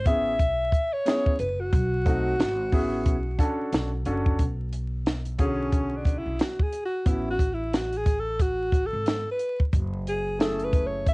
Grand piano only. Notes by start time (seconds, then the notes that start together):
0.06 B3 C#4 E4 G#4
1.05 B3 C#4 E4 G#4
2.05 A3 C4 D#4 F#4
2.72 B3 C#4 E4 G#4
3.38 C#4 D4 F#4 A4
4.06 C#4 D4 F#4 A4
5.38 D3 C#4 F#4 G#4
7.05 B3 C#4 E4 F#4
10.39 A3 C#4 E4 G#4